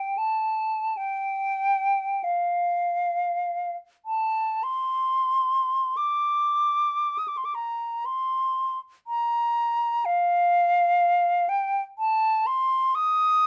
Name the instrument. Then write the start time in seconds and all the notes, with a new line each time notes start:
flute
Already playing: G5
0.18 A5
0.97 G5
2.24 F5
4.06 A5
4.63 C6
5.97 D6
7.18 D#6
7.28 D6
7.37 C6
7.45 D6
7.55 A#5
8.06 C6
9.07 A#5
10.05 F5
11.49 G5
11.99 A5
12.47 C6
12.95 D#6